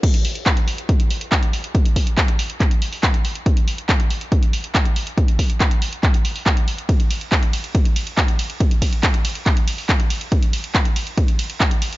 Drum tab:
CC |x---------------|----------------|----------------|----------------|
RD |----------------|----------------|----------------|----------------|
HH |xxoxxxoxxxoxxxox|xxoxxxoxxxooxxox|xxoxxxoxxxoxxxox|xxoxxxoxxxooxxox|
CP |----x-------x---|----x---x---x---|----x-------x---|----x---x---x---|
BD |o---o---o---o---|o-o-o---o---o---|o---o---o---o---|o-o-o---o---o---|

CC |----------------|----------------|----------------|
RD |x-x-x-x-x-x-x-x-|x-x-x-x-x-x-x-x-|x-x-x-x-x-x-x-x-|
HH |xxoxxxoxxxoxxxox|xxoxxxoxxxooxxox|xxoxxxoxxxoxxxox|
CP |----x-------x---|----x---x---x---|----x-------x---|
BD |o---o---o---o---|o-o-o---o---o---|o---o---o---o---|